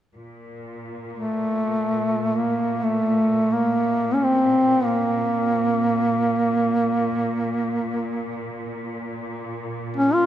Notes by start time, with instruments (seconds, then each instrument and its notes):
0.15 cello section A#2
1.13 duduk A3
2.36 duduk A#3
2.83 duduk A3
3.52 duduk A#3
4.14 duduk C#4
4.23 duduk C4
4.85 duduk A#3
9.96 duduk C#4
10.13 duduk F4